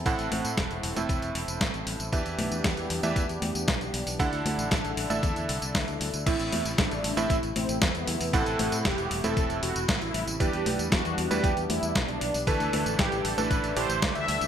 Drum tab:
CC |----------------|----------------|----------------|x---------------|
HH |xxoxxxoxxxoxxxox|xxoxxxoxxxoxxxoo|xxoxxxoxxxoxoxox|xxoxxxoxxxoxxxoo|
TB |xx-xxx-xxx-xxx-x|xx-xxx-xxx-xxx-x|xx-xxx-xxx-xxx-x|xx-xxx-xxx-xxx-x|
SD |----o-------o---|----o-------o---|----o-------o---|----o-------o---|
CG |--o----o--------|--o----o--o-----|--o----o--------|--o----o--o-----|
BD |o---o---o---o---|o---o---o---o---|o---o---o---o---|o---o---o---o---|

CC |----------------|----------------|----------------|
HH |xxoxxxoxxxoxxxox|xxoxxxoxxxoxxxoo|xxoxxxoxxxoxxxox|
TB |xx-xxx-xxx-xxx-x|xx-xxx-xxx-xxx-x|xx-xxx-xxx-xxx-x|
SD |----o-------o---|----o-------o---|----o-------o---|
CG |--o----o--------|--o----o--o-----|--o----o--------|
BD |o---o---o---o---|o---o---o---o---|o---o---o---o---|